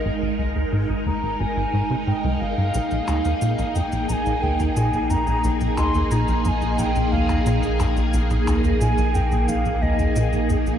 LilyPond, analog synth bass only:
\new Staff \with { instrumentName = "Analog synth bass" } { \clef bass \time 4/4 \key bes \mixolydian \tempo 4 = 89 aes,,16 aes,,16 c,16 d,16 aes,16 aes,,16 ees,16 aes,,16 aes,,16 aes,,16 aes,16 c16 aes,16 c,16 aes,,16 g,16 | bes,,16 bes,,16 d,16 ees,16 bes,16 bes,,16 f,16 bes,,16 bes,,16 bes,,16 d,16 ees,16 bes,16 bes,,16 f,16 bes,,16 | bes,,16 bes,,16 d,16 ees,16 bes,16 bes,,16 f,16 bes,,16 bes,,16 bes,,16 d,16 ees,16 bes,16 bes,,16 f,16 bes,,16 | bes,,16 bes,,16 d,16 ees,16 bes,16 bes,,16 f,16 bes,,16 bes,,16 bes,,16 d,16 ees,16 bes,16 bes,,16 f,16 bes,,16 | }